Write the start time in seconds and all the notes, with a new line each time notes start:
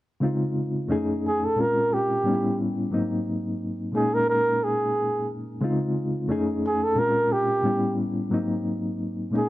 0.20 C#3 G#3 C4 D#4 F4
0.88 F2 A3 C#4 D#4 G#4
1.27 G#4
1.45 A4
1.56 A#2 G#3 C4 C#4 F4
1.61 A#4
1.94 G4
2.23 A2 G3 B3 C#4 D#4
2.34 E4
2.91 G#2 F#3 A#3 C4 D#4
3.92 A#2 G#3 A#3 C#4 D#4 G#4
4.14 A#4
4.29 A#4
4.64 G#4
5.61 C#3 G#3 C4 D#4 F4
6.28 F2 A3 C#4 D#4 G#4
6.66 G#4
6.84 A4
6.95 A#2 G#3 C4 C#4 F4 A#4
7.33 G4
7.63 A2 G3 B3 C#4
7.67 E4
8.30 G#2 F#3 A#3 C4 D#4
9.31 A#2 G#3 A#3 C#4
9.35 D#4 G#4